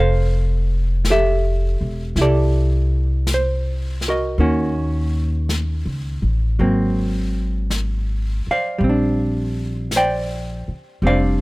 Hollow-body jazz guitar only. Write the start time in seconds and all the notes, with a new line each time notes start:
0.00 A4 C5 F5
1.10 G4 A4 E5
2.18 E4 G4 A4 D5
3.34 C5
4.08 F#4 A#4 D#5
4.39 D#3 A#3 C#4 F#4
6.59 F#3 A#3 C4
8.51 C5 D5 F5
8.78 G3
8.84 C4
8.89 D4
9.96 C5 D5 G5
11.03 G3 C4 D4 C5 D5 F5